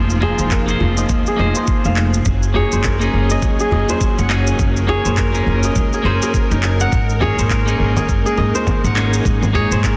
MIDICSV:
0, 0, Header, 1, 7, 480
1, 0, Start_track
1, 0, Tempo, 582524
1, 1866, Time_signature, 4, 2, 24, 8
1, 8214, End_track
2, 0, Start_track
2, 0, Title_t, "Kora"
2, 0, Program_c, 0, 46
2, 0, Note_on_c, 0, 68, 74
2, 0, Note_on_c, 0, 72, 68
2, 0, Note_on_c, 0, 75, 65
2, 0, Note_on_c, 0, 77, 67
2, 108, Note_off_c, 0, 75, 0
2, 183, Note_off_c, 0, 68, 0
2, 186, Note_on_c, 0, 68, 100
2, 326, Note_off_c, 0, 72, 0
2, 329, Note_on_c, 0, 72, 68
2, 428, Note_on_c, 0, 70, 78
2, 433, Note_off_c, 0, 77, 0
2, 808, Note_on_c, 0, 75, 69
2, 1048, Note_off_c, 0, 68, 0
2, 1052, Note_on_c, 0, 68, 73
2, 1145, Note_off_c, 0, 75, 0
2, 1148, Note_on_c, 0, 75, 71
2, 1286, Note_off_c, 0, 72, 0
2, 1290, Note_on_c, 0, 72, 68
2, 1477, Note_off_c, 0, 70, 0
2, 1528, Note_on_c, 0, 77, 71
2, 2030, Note_off_c, 0, 75, 0
2, 2101, Note_off_c, 0, 68, 0
2, 2105, Note_on_c, 0, 68, 88
2, 2243, Note_off_c, 0, 72, 0
2, 2247, Note_on_c, 0, 72, 68
2, 2345, Note_on_c, 0, 70, 77
2, 2351, Note_off_c, 0, 77, 0
2, 2729, Note_on_c, 0, 75, 72
2, 2966, Note_off_c, 0, 68, 0
2, 2969, Note_on_c, 0, 68, 74
2, 3065, Note_off_c, 0, 75, 0
2, 3068, Note_on_c, 0, 75, 68
2, 3209, Note_off_c, 0, 72, 0
2, 3212, Note_on_c, 0, 72, 68
2, 3394, Note_off_c, 0, 70, 0
2, 3449, Note_on_c, 0, 78, 68
2, 3950, Note_off_c, 0, 75, 0
2, 4023, Note_off_c, 0, 68, 0
2, 4027, Note_on_c, 0, 68, 94
2, 4164, Note_off_c, 0, 72, 0
2, 4167, Note_on_c, 0, 72, 75
2, 4244, Note_off_c, 0, 78, 0
2, 4267, Note_on_c, 0, 70, 80
2, 4654, Note_on_c, 0, 75, 69
2, 4888, Note_off_c, 0, 68, 0
2, 4892, Note_on_c, 0, 68, 70
2, 4984, Note_off_c, 0, 72, 0
2, 4987, Note_on_c, 0, 72, 88
2, 5127, Note_off_c, 0, 68, 0
2, 5130, Note_on_c, 0, 68, 72
2, 5316, Note_off_c, 0, 70, 0
2, 5368, Note_on_c, 0, 63, 67
2, 5465, Note_on_c, 0, 80, 72
2, 5536, Note_off_c, 0, 75, 0
2, 5611, Note_on_c, 0, 78, 91
2, 5943, Note_off_c, 0, 68, 0
2, 5947, Note_on_c, 0, 68, 91
2, 5966, Note_off_c, 0, 72, 0
2, 6088, Note_on_c, 0, 72, 72
2, 6187, Note_on_c, 0, 70, 79
2, 6207, Note_off_c, 0, 80, 0
2, 6406, Note_off_c, 0, 78, 0
2, 6562, Note_off_c, 0, 68, 0
2, 6565, Note_on_c, 0, 68, 71
2, 6705, Note_off_c, 0, 63, 0
2, 6801, Note_off_c, 0, 68, 0
2, 6804, Note_on_c, 0, 68, 76
2, 6903, Note_on_c, 0, 75, 67
2, 7042, Note_off_c, 0, 72, 0
2, 7045, Note_on_c, 0, 72, 72
2, 7235, Note_off_c, 0, 70, 0
2, 7286, Note_on_c, 0, 78, 69
2, 7785, Note_off_c, 0, 75, 0
2, 7866, Note_off_c, 0, 68, 0
2, 7869, Note_on_c, 0, 68, 96
2, 8007, Note_off_c, 0, 72, 0
2, 8010, Note_on_c, 0, 72, 69
2, 8081, Note_off_c, 0, 78, 0
2, 8104, Note_on_c, 0, 70, 77
2, 8214, Note_off_c, 0, 68, 0
2, 8214, Note_off_c, 0, 70, 0
2, 8214, Note_off_c, 0, 72, 0
2, 8214, End_track
3, 0, Start_track
3, 0, Title_t, "Clean electric guitar"
3, 0, Program_c, 1, 27
3, 0, Note_on_c, 1, 58, 69
3, 0, Note_on_c, 1, 63, 69
3, 0, Note_on_c, 1, 68, 65
3, 0, Note_on_c, 1, 72, 82
3, 155, Note_off_c, 1, 58, 0
3, 158, Note_off_c, 1, 63, 0
3, 161, Note_off_c, 1, 68, 0
3, 164, Note_off_c, 1, 72, 0
3, 170, Note_on_c, 1, 58, 77
3, 175, Note_on_c, 1, 63, 72
3, 181, Note_on_c, 1, 68, 70
3, 189, Note_on_c, 1, 72, 74
3, 525, Note_off_c, 1, 58, 0
3, 527, Note_off_c, 1, 63, 0
3, 531, Note_off_c, 1, 68, 0
3, 533, Note_off_c, 1, 72, 0
3, 546, Note_on_c, 1, 58, 66
3, 557, Note_on_c, 1, 63, 64
3, 566, Note_on_c, 1, 68, 63
3, 581, Note_on_c, 1, 72, 78
3, 1111, Note_off_c, 1, 58, 0
3, 1117, Note_off_c, 1, 63, 0
3, 1121, Note_off_c, 1, 68, 0
3, 1124, Note_on_c, 1, 58, 74
3, 1129, Note_off_c, 1, 72, 0
3, 1134, Note_on_c, 1, 63, 72
3, 1148, Note_on_c, 1, 68, 68
3, 1157, Note_on_c, 1, 72, 77
3, 1843, Note_off_c, 1, 58, 0
3, 1848, Note_off_c, 1, 63, 0
3, 1855, Note_off_c, 1, 68, 0
3, 1860, Note_off_c, 1, 72, 0
3, 2093, Note_on_c, 1, 58, 72
3, 2100, Note_on_c, 1, 63, 59
3, 2105, Note_on_c, 1, 68, 69
3, 2111, Note_on_c, 1, 73, 79
3, 2447, Note_off_c, 1, 58, 0
3, 2449, Note_off_c, 1, 63, 0
3, 2453, Note_off_c, 1, 68, 0
3, 2455, Note_off_c, 1, 73, 0
3, 2467, Note_on_c, 1, 58, 79
3, 2477, Note_on_c, 1, 63, 68
3, 2488, Note_on_c, 1, 68, 66
3, 2501, Note_on_c, 1, 61, 92
3, 3512, Note_off_c, 1, 58, 0
3, 3517, Note_off_c, 1, 63, 0
3, 3522, Note_off_c, 1, 68, 0
3, 3529, Note_off_c, 1, 61, 0
3, 3536, Note_on_c, 1, 58, 72
3, 3539, Note_on_c, 1, 63, 69
3, 3548, Note_on_c, 1, 68, 70
3, 3553, Note_on_c, 1, 61, 79
3, 3997, Note_off_c, 1, 58, 0
3, 3999, Note_off_c, 1, 63, 0
3, 4003, Note_off_c, 1, 68, 0
3, 4005, Note_off_c, 1, 61, 0
3, 4012, Note_on_c, 1, 58, 82
3, 4018, Note_on_c, 1, 63, 72
3, 4024, Note_on_c, 1, 68, 73
3, 4029, Note_on_c, 1, 73, 88
3, 4366, Note_off_c, 1, 58, 0
3, 4369, Note_off_c, 1, 63, 0
3, 4372, Note_off_c, 1, 68, 0
3, 4375, Note_off_c, 1, 73, 0
3, 4387, Note_on_c, 1, 58, 70
3, 4397, Note_on_c, 1, 63, 62
3, 4407, Note_on_c, 1, 68, 61
3, 4417, Note_on_c, 1, 61, 78
3, 4952, Note_off_c, 1, 58, 0
3, 4957, Note_off_c, 1, 63, 0
3, 4962, Note_off_c, 1, 68, 0
3, 4965, Note_on_c, 1, 58, 72
3, 4967, Note_off_c, 1, 61, 0
3, 4976, Note_on_c, 1, 63, 65
3, 4988, Note_on_c, 1, 68, 69
3, 4998, Note_on_c, 1, 61, 86
3, 5683, Note_off_c, 1, 58, 0
3, 5689, Note_off_c, 1, 63, 0
3, 5695, Note_off_c, 1, 68, 0
3, 5700, Note_off_c, 1, 61, 0
3, 5936, Note_on_c, 1, 58, 68
3, 5941, Note_on_c, 1, 63, 67
3, 5947, Note_on_c, 1, 68, 65
3, 5951, Note_on_c, 1, 73, 82
3, 6288, Note_off_c, 1, 58, 0
3, 6291, Note_off_c, 1, 63, 0
3, 6293, Note_off_c, 1, 68, 0
3, 6296, Note_off_c, 1, 73, 0
3, 6310, Note_on_c, 1, 58, 82
3, 6322, Note_on_c, 1, 63, 75
3, 6331, Note_on_c, 1, 68, 73
3, 6342, Note_on_c, 1, 61, 91
3, 7353, Note_off_c, 1, 58, 0
3, 7359, Note_off_c, 1, 63, 0
3, 7364, Note_off_c, 1, 68, 0
3, 7369, Note_off_c, 1, 61, 0
3, 7378, Note_on_c, 1, 58, 74
3, 7384, Note_on_c, 1, 63, 66
3, 7389, Note_on_c, 1, 68, 68
3, 7395, Note_on_c, 1, 61, 80
3, 7838, Note_off_c, 1, 58, 0
3, 7841, Note_off_c, 1, 63, 0
3, 7844, Note_off_c, 1, 68, 0
3, 7846, Note_off_c, 1, 61, 0
3, 7855, Note_on_c, 1, 58, 85
3, 7860, Note_on_c, 1, 63, 76
3, 7865, Note_on_c, 1, 68, 74
3, 7872, Note_on_c, 1, 73, 88
3, 8207, Note_off_c, 1, 58, 0
3, 8210, Note_off_c, 1, 63, 0
3, 8213, Note_off_c, 1, 68, 0
3, 8214, Note_off_c, 1, 73, 0
3, 8214, End_track
4, 0, Start_track
4, 0, Title_t, "String section"
4, 0, Program_c, 2, 48
4, 0, Note_on_c, 2, 53, 77
4, 0, Note_on_c, 2, 60, 68
4, 0, Note_on_c, 2, 65, 81
4, 1832, Note_off_c, 2, 53, 0
4, 1832, Note_off_c, 2, 60, 0
4, 1832, Note_off_c, 2, 65, 0
4, 1863, Note_on_c, 2, 54, 75
4, 1863, Note_on_c, 2, 68, 79
4, 1865, Note_on_c, 2, 61, 69
4, 3765, Note_off_c, 2, 68, 0
4, 3793, Note_on_c, 2, 70, 87
4, 5671, Note_off_c, 2, 54, 0
4, 5672, Note_off_c, 2, 61, 0
4, 5711, Note_on_c, 2, 56, 74
4, 5712, Note_on_c, 2, 63, 71
4, 7596, Note_off_c, 2, 70, 0
4, 7623, Note_on_c, 2, 68, 86
4, 8214, Note_off_c, 2, 56, 0
4, 8214, Note_off_c, 2, 63, 0
4, 8214, Note_off_c, 2, 68, 0
4, 8214, End_track
5, 0, Start_track
5, 0, Title_t, "Upright bass"
5, 0, Program_c, 3, 32
5, 0, Note_on_c, 3, 29, 97
5, 241, Note_off_c, 3, 29, 0
5, 323, Note_on_c, 3, 29, 82
5, 604, Note_off_c, 3, 29, 0
5, 664, Note_on_c, 3, 29, 80
5, 831, Note_off_c, 3, 29, 0
5, 902, Note_on_c, 3, 39, 80
5, 992, Note_off_c, 3, 39, 0
5, 1144, Note_on_c, 3, 29, 83
5, 1233, Note_off_c, 3, 29, 0
5, 1525, Note_on_c, 3, 29, 97
5, 1806, Note_off_c, 3, 29, 0
5, 1859, Note_on_c, 3, 30, 96
5, 2159, Note_off_c, 3, 30, 0
5, 2246, Note_on_c, 3, 30, 84
5, 2526, Note_off_c, 3, 30, 0
5, 2583, Note_on_c, 3, 30, 80
5, 2751, Note_off_c, 3, 30, 0
5, 2821, Note_on_c, 3, 37, 77
5, 2912, Note_off_c, 3, 37, 0
5, 3062, Note_on_c, 3, 30, 82
5, 3152, Note_off_c, 3, 30, 0
5, 3448, Note_on_c, 3, 30, 96
5, 3727, Note_off_c, 3, 30, 0
5, 3782, Note_on_c, 3, 30, 92
5, 4081, Note_off_c, 3, 30, 0
5, 4164, Note_on_c, 3, 30, 81
5, 4445, Note_off_c, 3, 30, 0
5, 4503, Note_on_c, 3, 30, 76
5, 4670, Note_off_c, 3, 30, 0
5, 4743, Note_on_c, 3, 37, 78
5, 4833, Note_off_c, 3, 37, 0
5, 4982, Note_on_c, 3, 30, 81
5, 5072, Note_off_c, 3, 30, 0
5, 5366, Note_on_c, 3, 30, 98
5, 5646, Note_off_c, 3, 30, 0
5, 5705, Note_on_c, 3, 32, 94
5, 6002, Note_off_c, 3, 32, 0
5, 6086, Note_on_c, 3, 32, 83
5, 6366, Note_off_c, 3, 32, 0
5, 6425, Note_on_c, 3, 32, 75
5, 6591, Note_off_c, 3, 32, 0
5, 6665, Note_on_c, 3, 30, 81
5, 6754, Note_off_c, 3, 30, 0
5, 6903, Note_on_c, 3, 32, 84
5, 6993, Note_off_c, 3, 32, 0
5, 7285, Note_on_c, 3, 32, 92
5, 7566, Note_off_c, 3, 32, 0
5, 7625, Note_on_c, 3, 32, 94
5, 7922, Note_off_c, 3, 32, 0
5, 8002, Note_on_c, 3, 32, 82
5, 8214, Note_off_c, 3, 32, 0
5, 8214, End_track
6, 0, Start_track
6, 0, Title_t, "Djembe"
6, 92, Note_on_c, 9, 63, 36
6, 174, Note_off_c, 9, 63, 0
6, 179, Note_on_c, 9, 62, 54
6, 180, Note_on_c, 9, 63, 58
6, 187, Note_on_c, 9, 64, 91
6, 262, Note_off_c, 9, 62, 0
6, 262, Note_off_c, 9, 63, 0
6, 270, Note_off_c, 9, 64, 0
6, 565, Note_on_c, 9, 63, 63
6, 647, Note_off_c, 9, 63, 0
6, 661, Note_on_c, 9, 64, 88
6, 743, Note_off_c, 9, 64, 0
6, 811, Note_on_c, 9, 62, 58
6, 893, Note_off_c, 9, 62, 0
6, 1148, Note_on_c, 9, 62, 56
6, 1231, Note_off_c, 9, 62, 0
6, 1288, Note_on_c, 9, 62, 63
6, 1371, Note_off_c, 9, 62, 0
6, 1627, Note_on_c, 9, 62, 62
6, 1710, Note_off_c, 9, 62, 0
6, 2103, Note_on_c, 9, 64, 90
6, 2186, Note_off_c, 9, 64, 0
6, 3059, Note_on_c, 9, 64, 83
6, 3067, Note_on_c, 9, 62, 51
6, 3142, Note_off_c, 9, 64, 0
6, 3149, Note_off_c, 9, 62, 0
6, 3207, Note_on_c, 9, 63, 82
6, 3289, Note_off_c, 9, 63, 0
6, 3446, Note_on_c, 9, 63, 54
6, 3529, Note_off_c, 9, 63, 0
6, 3549, Note_on_c, 9, 62, 60
6, 3631, Note_off_c, 9, 62, 0
6, 3929, Note_on_c, 9, 63, 33
6, 4012, Note_off_c, 9, 63, 0
6, 4024, Note_on_c, 9, 64, 94
6, 4026, Note_on_c, 9, 63, 61
6, 4029, Note_on_c, 9, 62, 44
6, 4106, Note_off_c, 9, 64, 0
6, 4108, Note_off_c, 9, 63, 0
6, 4111, Note_off_c, 9, 62, 0
6, 4409, Note_on_c, 9, 63, 68
6, 4491, Note_off_c, 9, 63, 0
6, 4514, Note_on_c, 9, 64, 81
6, 4597, Note_off_c, 9, 64, 0
6, 4650, Note_on_c, 9, 62, 59
6, 4732, Note_off_c, 9, 62, 0
6, 4989, Note_on_c, 9, 63, 54
6, 4995, Note_on_c, 9, 62, 48
6, 5072, Note_off_c, 9, 63, 0
6, 5077, Note_off_c, 9, 62, 0
6, 5132, Note_on_c, 9, 62, 56
6, 5215, Note_off_c, 9, 62, 0
6, 5470, Note_on_c, 9, 62, 58
6, 5552, Note_off_c, 9, 62, 0
6, 5950, Note_on_c, 9, 64, 97
6, 6032, Note_off_c, 9, 64, 0
6, 6900, Note_on_c, 9, 64, 78
6, 6901, Note_on_c, 9, 62, 52
6, 6983, Note_off_c, 9, 64, 0
6, 6984, Note_off_c, 9, 62, 0
6, 7045, Note_on_c, 9, 63, 70
6, 7127, Note_off_c, 9, 63, 0
6, 7294, Note_on_c, 9, 63, 56
6, 7376, Note_off_c, 9, 63, 0
6, 7395, Note_on_c, 9, 62, 66
6, 7478, Note_off_c, 9, 62, 0
6, 7772, Note_on_c, 9, 63, 33
6, 7855, Note_off_c, 9, 63, 0
6, 7864, Note_on_c, 9, 63, 56
6, 7866, Note_on_c, 9, 64, 86
6, 7869, Note_on_c, 9, 62, 48
6, 7947, Note_off_c, 9, 63, 0
6, 7949, Note_off_c, 9, 64, 0
6, 7951, Note_off_c, 9, 62, 0
6, 8214, End_track
7, 0, Start_track
7, 0, Title_t, "Drums"
7, 82, Note_on_c, 9, 82, 32
7, 164, Note_off_c, 9, 82, 0
7, 320, Note_on_c, 9, 82, 66
7, 402, Note_off_c, 9, 82, 0
7, 419, Note_on_c, 9, 39, 78
7, 422, Note_on_c, 9, 36, 102
7, 422, Note_on_c, 9, 82, 54
7, 502, Note_off_c, 9, 39, 0
7, 504, Note_off_c, 9, 82, 0
7, 505, Note_off_c, 9, 36, 0
7, 563, Note_on_c, 9, 82, 35
7, 645, Note_off_c, 9, 82, 0
7, 803, Note_on_c, 9, 82, 64
7, 886, Note_off_c, 9, 82, 0
7, 900, Note_on_c, 9, 82, 53
7, 902, Note_on_c, 9, 36, 102
7, 982, Note_off_c, 9, 82, 0
7, 984, Note_off_c, 9, 36, 0
7, 1042, Note_on_c, 9, 82, 32
7, 1124, Note_off_c, 9, 82, 0
7, 1279, Note_on_c, 9, 82, 74
7, 1362, Note_off_c, 9, 82, 0
7, 1376, Note_on_c, 9, 82, 55
7, 1382, Note_on_c, 9, 36, 107
7, 1459, Note_off_c, 9, 82, 0
7, 1464, Note_off_c, 9, 36, 0
7, 1522, Note_on_c, 9, 82, 34
7, 1604, Note_off_c, 9, 82, 0
7, 1617, Note_on_c, 9, 39, 72
7, 1699, Note_off_c, 9, 39, 0
7, 1762, Note_on_c, 9, 82, 66
7, 1844, Note_off_c, 9, 82, 0
7, 1857, Note_on_c, 9, 82, 51
7, 1861, Note_on_c, 9, 36, 107
7, 1940, Note_off_c, 9, 82, 0
7, 1943, Note_off_c, 9, 36, 0
7, 1999, Note_on_c, 9, 82, 29
7, 2082, Note_off_c, 9, 82, 0
7, 2243, Note_on_c, 9, 82, 67
7, 2326, Note_off_c, 9, 82, 0
7, 2336, Note_on_c, 9, 39, 74
7, 2338, Note_on_c, 9, 82, 52
7, 2342, Note_on_c, 9, 36, 93
7, 2419, Note_off_c, 9, 39, 0
7, 2421, Note_off_c, 9, 82, 0
7, 2425, Note_off_c, 9, 36, 0
7, 2480, Note_on_c, 9, 82, 35
7, 2563, Note_off_c, 9, 82, 0
7, 2720, Note_on_c, 9, 82, 61
7, 2802, Note_off_c, 9, 82, 0
7, 2820, Note_on_c, 9, 82, 54
7, 2822, Note_on_c, 9, 36, 106
7, 2903, Note_off_c, 9, 82, 0
7, 2904, Note_off_c, 9, 36, 0
7, 2962, Note_on_c, 9, 82, 31
7, 3045, Note_off_c, 9, 82, 0
7, 3206, Note_on_c, 9, 82, 76
7, 3288, Note_off_c, 9, 82, 0
7, 3303, Note_on_c, 9, 36, 100
7, 3304, Note_on_c, 9, 82, 56
7, 3386, Note_off_c, 9, 36, 0
7, 3386, Note_off_c, 9, 82, 0
7, 3447, Note_on_c, 9, 82, 34
7, 3529, Note_off_c, 9, 82, 0
7, 3541, Note_on_c, 9, 39, 73
7, 3624, Note_off_c, 9, 39, 0
7, 3684, Note_on_c, 9, 82, 63
7, 3766, Note_off_c, 9, 82, 0
7, 3784, Note_on_c, 9, 36, 104
7, 3785, Note_on_c, 9, 82, 51
7, 3866, Note_off_c, 9, 36, 0
7, 3867, Note_off_c, 9, 82, 0
7, 3927, Note_on_c, 9, 82, 32
7, 4009, Note_off_c, 9, 82, 0
7, 4166, Note_on_c, 9, 82, 65
7, 4248, Note_off_c, 9, 82, 0
7, 4260, Note_on_c, 9, 39, 75
7, 4262, Note_on_c, 9, 82, 56
7, 4265, Note_on_c, 9, 36, 97
7, 4342, Note_off_c, 9, 39, 0
7, 4345, Note_off_c, 9, 82, 0
7, 4347, Note_off_c, 9, 36, 0
7, 4405, Note_on_c, 9, 82, 33
7, 4488, Note_off_c, 9, 82, 0
7, 4642, Note_on_c, 9, 82, 63
7, 4724, Note_off_c, 9, 82, 0
7, 4744, Note_on_c, 9, 82, 52
7, 4745, Note_on_c, 9, 36, 101
7, 4826, Note_off_c, 9, 82, 0
7, 4828, Note_off_c, 9, 36, 0
7, 4886, Note_on_c, 9, 82, 31
7, 4968, Note_off_c, 9, 82, 0
7, 5128, Note_on_c, 9, 82, 69
7, 5211, Note_off_c, 9, 82, 0
7, 5225, Note_on_c, 9, 36, 97
7, 5227, Note_on_c, 9, 82, 54
7, 5307, Note_off_c, 9, 36, 0
7, 5309, Note_off_c, 9, 82, 0
7, 5366, Note_on_c, 9, 82, 33
7, 5448, Note_off_c, 9, 82, 0
7, 5461, Note_on_c, 9, 39, 69
7, 5544, Note_off_c, 9, 39, 0
7, 5606, Note_on_c, 9, 82, 60
7, 5688, Note_off_c, 9, 82, 0
7, 5704, Note_on_c, 9, 82, 53
7, 5705, Note_on_c, 9, 36, 94
7, 5786, Note_off_c, 9, 82, 0
7, 5787, Note_off_c, 9, 36, 0
7, 5846, Note_on_c, 9, 82, 27
7, 5929, Note_off_c, 9, 82, 0
7, 5941, Note_on_c, 9, 64, 64
7, 6024, Note_off_c, 9, 64, 0
7, 6088, Note_on_c, 9, 82, 65
7, 6171, Note_off_c, 9, 82, 0
7, 6183, Note_on_c, 9, 39, 70
7, 6184, Note_on_c, 9, 36, 91
7, 6185, Note_on_c, 9, 82, 55
7, 6265, Note_off_c, 9, 39, 0
7, 6266, Note_off_c, 9, 36, 0
7, 6267, Note_off_c, 9, 82, 0
7, 6327, Note_on_c, 9, 82, 33
7, 6409, Note_off_c, 9, 82, 0
7, 6564, Note_on_c, 9, 64, 67
7, 6567, Note_on_c, 9, 82, 61
7, 6647, Note_off_c, 9, 64, 0
7, 6649, Note_off_c, 9, 82, 0
7, 6664, Note_on_c, 9, 36, 99
7, 6666, Note_on_c, 9, 82, 50
7, 6747, Note_off_c, 9, 36, 0
7, 6748, Note_off_c, 9, 82, 0
7, 6810, Note_on_c, 9, 82, 31
7, 6892, Note_off_c, 9, 82, 0
7, 7046, Note_on_c, 9, 82, 72
7, 7129, Note_off_c, 9, 82, 0
7, 7143, Note_on_c, 9, 64, 70
7, 7145, Note_on_c, 9, 36, 99
7, 7145, Note_on_c, 9, 82, 50
7, 7225, Note_off_c, 9, 64, 0
7, 7227, Note_off_c, 9, 36, 0
7, 7227, Note_off_c, 9, 82, 0
7, 7289, Note_on_c, 9, 82, 30
7, 7371, Note_off_c, 9, 82, 0
7, 7384, Note_on_c, 9, 39, 68
7, 7466, Note_off_c, 9, 39, 0
7, 7528, Note_on_c, 9, 82, 65
7, 7611, Note_off_c, 9, 82, 0
7, 7624, Note_on_c, 9, 36, 95
7, 7628, Note_on_c, 9, 82, 52
7, 7707, Note_off_c, 9, 36, 0
7, 7710, Note_off_c, 9, 82, 0
7, 7768, Note_on_c, 9, 64, 71
7, 7770, Note_on_c, 9, 82, 29
7, 7850, Note_off_c, 9, 64, 0
7, 7852, Note_off_c, 9, 82, 0
7, 8007, Note_on_c, 9, 82, 66
7, 8089, Note_off_c, 9, 82, 0
7, 8103, Note_on_c, 9, 36, 93
7, 8107, Note_on_c, 9, 39, 67
7, 8109, Note_on_c, 9, 82, 51
7, 8185, Note_off_c, 9, 36, 0
7, 8190, Note_off_c, 9, 39, 0
7, 8192, Note_off_c, 9, 82, 0
7, 8214, End_track
0, 0, End_of_file